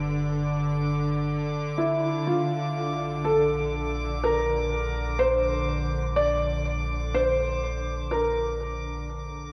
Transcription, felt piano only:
1.78 2.28 E4 medium
2.27 3.27 F4 medium
3.24 4.25 A4 medium
4.24 5.24 A#4 medium
5.19 6.21 C5 medium
6.16 7.19 D5 loud
7.14 8.17 C5 medium
8.11 9.52 A#4 medium

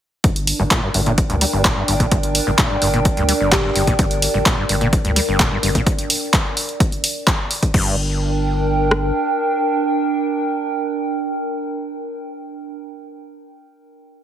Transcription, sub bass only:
0.24 0.52 G1 loud
0.59 0.67 G1 loud
0.94 1.23 G1 medium
1.30 1.44 D2 loud
1.53 1.81 G1 loud
1.88 2.03 G1 medium
2.12 2.40 G1 loud
2.47 2.54 G1 loud
2.82 3.10 G1 medium
3.17 3.32 D2 loud
3.41 3.69 G1 loud
3.76 3.91 G1 medium
3.99 4.27 G1 loud
4.34 4.42 G1 loud
4.69 4.98 G1 medium
5.05 5.19 D2 loud
5.28 5.56 G1 loud
5.63 5.78 G1 medium
7.74 9.11 G1 medium

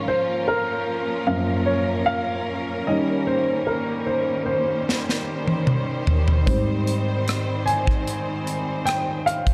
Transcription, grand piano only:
0.08 0.49 C5 medium
0.48 1.30 A#4 medium
1.27 2.83 F#2 soft
1.27 2.83 F3 soft
1.27 2.83 A#3 soft
1.27 1.68 F5 medium
1.66 2.08 C#5 medium
2.06 2.89 F5 medium
2.87 6.03 D#3 soft
2.87 6.04 G3 soft
2.87 6.04 C#4 soft
2.87 2.96 D#5 medium
3.27 3.64 C5 medium
3.67 4.04 A#4 medium
4.07 4.44 C5 medium
4.46 5.22 C5 medium
6.46 7.00 G#2 soft
6.46 7.00 G3 soft
6.46 7.01 C4 soft
6.46 7.70 C5 medium
7.66 8.42 G#5 medium
8.86 9.28 G5 medium
9.26 9.54 F5 medium

